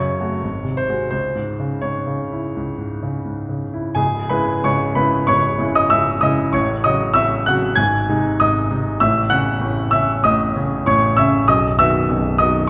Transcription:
0.00 0.40 F#2 soft
0.00 0.33 C#3 soft
0.00 0.75 C#5 medium
0.20 0.40 A3 soft
0.20 0.41 F#4 soft
0.43 1.09 G#1 soft
0.64 1.01 C3 soft
0.77 1.09 C5 medium
0.89 1.10 G#3 soft
0.89 1.10 F#4 soft
1.11 2.52 C#2 soft
1.11 1.83 C5 medium
1.35 1.74 G#2 soft
1.59 1.98 C#3 soft
1.82 2.22 G#2 soft
1.82 3.61 C#5 medium
2.07 2.46 C#3 soft
2.32 2.70 E4 soft
2.56 3.93 C#2 soft
2.78 3.16 G#2 soft
3.03 3.41 C#3 soft
3.26 3.64 G#2 soft
3.49 3.87 C#3 soft
3.73 3.97 E4 soft
3.95 4.29 C#1 soft
3.95 4.29 C#2 medium
3.95 4.27 G#4 medium
3.95 4.29 G#5 medium
4.29 4.60 C#3 soft
4.29 4.60 G#3 soft
4.29 4.61 E4 soft
4.29 4.61 B4 medium
4.29 4.63 B5 medium
4.64 4.95 C#1 soft
4.64 4.95 C#2 soft
4.64 4.94 C#5 soft
4.64 4.96 C#6 medium
4.95 5.24 C#3 soft
4.95 5.25 G#3 soft
4.95 5.25 E4 soft
4.95 5.26 B4 medium
4.95 5.27 B5 medium
5.27 5.59 C#1 soft
5.27 5.59 C#2 soft
5.27 5.72 C#5 medium
5.27 5.75 C#6 medium
5.58 5.87 C#3 soft
5.58 5.88 G#3 soft
5.58 5.88 E4 soft
5.75 5.90 D#5 medium
5.75 5.91 D#6 medium
5.90 6.21 C#1 soft
5.90 6.21 C#2 soft
5.90 6.20 E5 medium
5.90 6.22 E6 medium
6.21 6.50 C#3 soft
6.21 6.50 G#3 soft
6.21 6.51 E4 soft
6.21 6.52 D#5 medium
6.21 6.53 D#6 medium
6.53 6.83 A1 medium
6.53 6.83 A2 soft
6.53 6.82 C#5 medium
6.53 6.84 C#6 medium
6.84 7.12 C#3 soft
6.84 7.13 F#3 soft
6.84 7.13 F#4 soft
6.84 7.13 D#5 medium
6.84 7.15 D#6 medium
7.14 7.45 A1 soft
7.14 7.45 A2 soft
7.14 7.44 E5 medium
7.14 7.45 E6 medium
7.46 7.75 C#3 soft
7.46 7.75 F#3 soft
7.46 7.75 F#4 soft
7.46 7.76 F#5 medium
7.46 7.77 F#6 medium
7.75 8.07 G#1 medium
7.75 8.07 G#2 soft
7.75 8.35 G#5 medium
7.75 8.39 G#6 medium
8.09 8.37 C3 soft
8.09 8.37 G#3 soft
8.09 8.37 D#4 soft
8.40 8.70 G#1 soft
8.40 8.70 G#2 soft
8.40 8.98 D#5 medium
8.40 9.01 D#6 medium
8.71 8.98 C3 soft
8.71 8.98 G#3 soft
8.71 8.98 D#4 soft
9.00 9.30 A1 soft
9.00 9.31 A2 soft
9.00 9.30 E5 medium
9.00 9.31 E6 medium
9.30 9.58 C#3 soft
9.30 9.59 C#4 soft
9.30 9.88 F#5 medium
9.30 9.92 F#6 medium
9.61 9.91 A1 soft
9.61 9.91 A2 medium
9.91 10.21 C#3 soft
9.91 10.21 C#4 soft
9.91 10.22 E5 medium
9.91 10.23 E6 medium
10.24 10.55 A1 soft
10.24 10.55 A2 soft
10.24 10.83 D#5 medium
10.24 10.86 D#6 medium
10.56 10.83 C#3 soft
10.56 10.84 C#4 soft
10.86 11.16 A1 soft
10.86 11.16 A2 soft
10.86 11.15 C#5 medium
10.86 11.17 C#6 medium
11.17 11.45 C#3 soft
11.17 11.45 C#4 soft
11.17 11.46 E5 medium
11.17 11.47 E6 medium
11.43 11.75 B0 soft
11.48 11.78 B1 medium
11.48 11.77 D#5 medium
11.48 11.79 D#6 medium
11.79 12.06 D#3 soft
11.79 12.06 B3 soft
11.79 12.07 F#4 soft
11.79 12.35 E5 medium
11.79 12.39 E6 medium
12.09 12.38 B0 medium
12.09 12.38 B1 medium
12.38 12.65 D#3 soft
12.38 12.66 B3 soft
12.38 12.66 F#4 soft
12.38 12.66 D#5 medium
12.38 12.68 D#6 medium

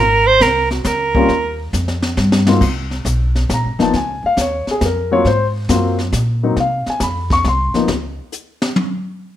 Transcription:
0.00 0.40 G#1 medium
0.00 0.28 A#4 loud
0.27 0.43 C5 loud
0.40 0.84 C2 medium
0.40 0.71 A#4 loud
0.40 kick soft
0.40 snare medium
0.40 hi-hat pedal medium
0.71 0.88 F#4 medium
0.71 snare soft
0.85 1.28 C#2 loud
0.85 1.60 A#4 medium
0.85 kick soft
0.85 snare medium
0.85 hi-hat pedal medium
1.15 1.28 G3 medium
1.15 1.28 A#3 medium
1.15 1.28 C4 medium
1.15 1.28 C#4 medium
1.15 1.28 F4 medium
1.15 kick medium
1.29 1.72 D#2 medium
1.29 brush sweep medium
1.29 kick soft
1.29 snare soft
1.73 2.16 F2 medium
1.73 snare soft
1.73 hi-hat pedal medium
1.88 snare medium
2.02 snare medium
2.17 2.60 G2 medium
2.17 snare medium
2.32 snare medium
2.47 2.60 G#2 medium
2.47 2.60 F#3 medium
2.47 2.60 A#3 medium
2.47 2.61 C4 medium
2.47 2.60 D#4 medium
2.47 2.61 F4 medium
2.47 snare medium
2.61 3.04 C2 medium
2.61 brush sweep soft
2.61 kick medium
2.61 snare soft
2.61 crash medium
2.91 snare soft
3.05 3.48 B1 medium
3.05 kick soft
3.05 snare medium
3.05 hi-hat pedal medium
3.35 snare soft
3.49 3.66 A#1 medium
3.49 kick soft
3.49 snare medium
3.49 hi-hat pedal medium
3.54 3.81 A#5 medium
3.64 3.78 G#1 medium
3.79 3.92 F#1 medium
3.79 3.92 F3 medium
3.79 3.92 A#3 medium
3.79 3.92 B3 medium
3.79 3.92 D#4 medium
3.79 3.95 A5 medium
3.79 snare soft
3.93 4.21 C#2 medium
3.93 4.24 G#5 medium
3.93 brush sweep soft
3.93 kick soft
3.93 snare soft
4.23 4.38 F5 medium
4.23 muted upright bass stroke soft
4.37 4.65 D#2 medium
4.37 kick soft
4.37 snare medium
4.37 hi-hat pedal medium
4.41 4.68 C#5 medium
4.67 4.83 G#4 medium
4.67 muted upright bass stroke soft
4.67 snare soft
4.81 5.24 F2 medium
4.81 kick soft
4.81 snare medium
4.81 hi-hat pedal medium
4.85 5.12 A#4 medium
5.11 5.24 F#3 medium
5.11 5.24 A#3 medium
5.11 5.24 C4 medium
5.11 5.25 F4 medium
5.11 5.26 C#5 medium
5.25 5.68 G#2 medium
5.25 5.45 C5 medium
5.25 brush sweep medium
5.25 kick soft
5.25 snare soft
5.69 6.12 F#2 medium
5.69 5.96 F#3 medium
5.69 5.96 A#3 medium
5.69 5.97 C4 medium
5.69 5.97 F4 medium
5.69 kick soft
5.69 snare medium
5.69 hi-hat pedal medium
5.99 snare soft
6.12 6.55 A#2 medium
6.12 kick soft
6.12 snare medium
6.12 hi-hat pedal medium
6.43 6.56 F#3 medium
6.43 6.56 A#3 medium
6.43 6.56 C4 medium
6.43 6.56 D#4 medium
6.57 6.85 C3 medium
6.57 6.88 F5 medium
6.57 brush sweep soft
6.57 kick soft
6.57 snare soft
6.86 7.02 G#5 medium
6.86 muted upright bass stroke soft
6.86 snare soft
7.00 7.43 F2 medium
7.00 7.31 B5 medium
7.00 kick soft
7.00 snare medium
7.00 hi-hat pedal medium
7.30 7.46 C#6 medium
7.30 kick medium
7.30 snare soft
7.44 7.72 C2 medium
7.44 7.81 C6 medium
7.44 kick soft
7.44 snare soft
7.74 7.88 F3 medium
7.74 7.88 A#3 medium
7.74 7.88 B3 medium
7.74 7.88 D#4 medium
7.74 muted upright bass stroke soft
7.74 snare soft
7.88 8.17 C#2 medium
7.88 snare loud
8.32 hi-hat pedal medium
8.62 snare medium
8.76 high tom medium

